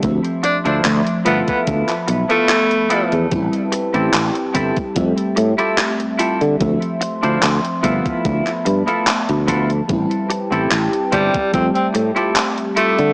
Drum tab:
HH |xxxxxxxxxxxxxxxx|xxxxxxxxxxxxxxxx|xxxxxxxxxxxxxxxx|xxxxxxxxxxxxxxxx|
CP |----x----x--x---|----x-------x---|----x----x--x---|----x-------x---|
BD |o------oo-------|o-----ooo-------|o-----ooo-----o-|o-----ooo-------|